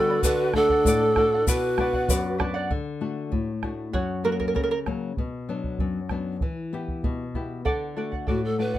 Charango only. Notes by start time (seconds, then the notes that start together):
0.10 B4 D5 B5
0.25 A4 D5 F#5
0.56 A4 D5 F#5
0.70 D5 F#5
0.87 A4 D5 F#5
1.17 A4 D5 F#5
1.34 D5 F#5
1.47 B4 D5 F#5
1.79 B4 D5 F#5
1.94 D5 F#5
2.10 B4 D5 F#5
2.38 B4 D5 F#5
2.54 D5 F#5
3.93 F#4 C#5
4.25 F#4 A#4
4.40 A#4
4.48 A#4
4.56 A#4
4.63 A#4
4.71 A#4
7.65 A4 D5 F#5
7.96 A4 D5 F#5
8.12 D5 F#5
8.27 A4 D5 F#5
8.58 A4 D5 F#5
8.74 F#5